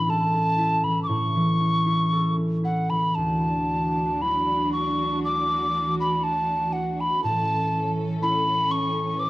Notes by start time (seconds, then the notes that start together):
Already playing: A2 E3 B3 C#4 E4 B5
0.08 A4 A5
0.33 C#4
0.58 E4
0.83 E3 B5
1.03 D6
1.07 A2 C#6
1.36 E3
1.60 C#4
1.86 E4
2.12 A4
2.36 C#4
2.64 E4 F#5
2.90 E3 B5
3.14 D2 E3 D4 F#4 A5
4.21 F#3 D4 E4 B5
4.73 C#6
5.25 D6
6.00 B5
6.23 A5
6.72 F#5
7.00 B5
7.24 A2 C#4 A4 A5
8.21 A3 C#4 E4 B5
8.71 C#6
9.19 B4 D6